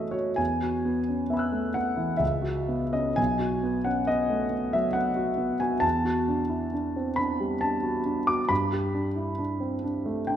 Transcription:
Already playing: F#2 E3 G#3 A3 B3 F#4 C#5 D#5 E5
0.11 F#4 C#5
0.36 E2 G#5
0.63 F#4
0.85 B3
1.09 C#4
1.30 B3 E5 B5
1.37 E6 F#6
1.52 A3
1.74 B3 F#5
1.97 E3
2.17 C#2 E5
2.42 F#4
2.68 B3
2.93 C#4 D#5
3.16 B1 G#5
3.39 F#4
3.63 B3
3.85 C#4 F#5
4.07 B3 D#5
4.30 A3
4.50 B3
4.73 F#3 E5
4.93 B3 F#5
5.16 F#4
5.37 B3
5.60 F#4 G#5
5.80 E2 A5
6.05 F#4
6.28 D4
6.49 E4
6.74 D4
6.96 C4
7.16 D4 B5
7.40 G3
7.61 D4 A5
7.83 F#4
8.05 D4
8.27 F#4 D6
8.49 G2 B5
8.73 G4
8.94 D4
9.16 E4
9.39 D4
9.60 C4
9.84 D4
10.06 A3
10.27 D4 G5

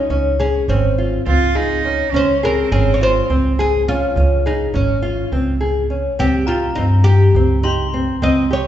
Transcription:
Already playing: D#4
0.10 C#2 C#4
0.39 C#4 G#4
0.68 G#1 C4 C#4
0.98 F4
1.26 C#2 C4 F4
1.55 D#4 G#4
1.84 C#4
2.12 C#2 C#4
2.16 C5
2.43 C4 G#4 A#4
2.72 G#1 C#4 G#4
2.94 C#5
3.01 F4 C5
3.30 C#2 C4
3.59 G#4
3.88 C#4 F4
4.16 C#2 C#4
4.46 D#4 G#4
4.74 G#1 C#4
5.02 F4
5.32 C#2 C4
5.61 G#4
5.90 C#4
6.19 C#2 C4 G4
6.47 F4 G4 A#5
6.75 G2 C4 D#4
7.04 G4
7.34 C#2 C4
7.63 D#4 G4 C6
7.94 C4
8.22 C#2 C4 D#5
8.51 G4 C#5

